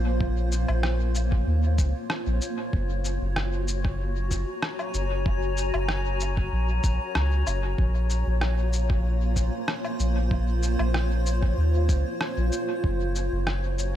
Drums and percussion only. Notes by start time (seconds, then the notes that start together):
0.21 kick
0.52 cabasa
0.68 low woodblock
0.83 cross-stick
1.15 cabasa
1.32 kick
1.78 kick, cabasa
2.10 cross-stick
2.41 cabasa
2.73 kick
3.05 cabasa
3.36 cross-stick
3.68 cabasa
3.85 kick
4.31 kick, cabasa
4.62 cross-stick
4.79 low woodblock
4.94 cabasa
5.26 kick
5.57 cabasa
5.74 low woodblock
5.89 cross-stick
6.20 cabasa
6.37 kick
6.84 kick, cabasa
7.15 cross-stick
7.47 cabasa, low woodblock
7.78 kick
8.10 cabasa
8.41 cross-stick
8.73 cabasa
8.90 kick
9.36 kick, cabasa
9.68 cross-stick
9.85 low woodblock
10.00 cabasa
10.31 kick
10.63 cabasa
10.79 low woodblock
10.94 cross-stick
11.26 cabasa
11.43 kick
11.89 kick, cabasa
12.21 cross-stick
12.52 cabasa
12.84 kick
13.15 cabasa
13.47 cross-stick
13.79 cabasa